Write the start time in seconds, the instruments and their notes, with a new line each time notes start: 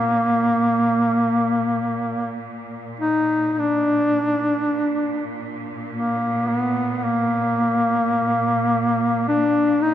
Already playing: cello section A#2, duduk A#3
3.00 duduk D#4
3.51 duduk D#4
3.59 cello section A#2, duduk D4
5.92 duduk A#3
6.48 duduk B3
6.97 duduk B3
7.04 duduk A#3
9.28 duduk D4
9.82 duduk D#4